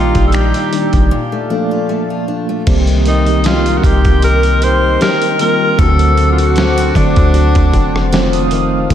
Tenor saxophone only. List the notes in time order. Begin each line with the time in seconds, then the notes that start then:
Already playing: F4
0.27 A4
0.34 G4
3.08 D#4
3.46 F4
3.78 F#4
3.85 G4
4.24 A#4
4.63 C5
5.02 A#4
5.41 A#4
5.79 A4
6.32 F4
6.39 F#4
6.96 D4